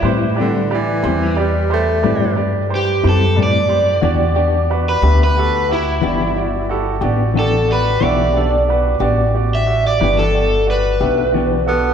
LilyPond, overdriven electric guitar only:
\new Staff \with { instrumentName = "Overdriven electric guitar" } { \time 12/8 \key e \minor \tempo 4. = 60 e'2 r2 g'8 a'8 d''4~ | d''4~ d''16 b'8 b'8. e'2 r8 a'8 b'8 | d''2~ d''16 e''8 d''8 a'8. b'2 | }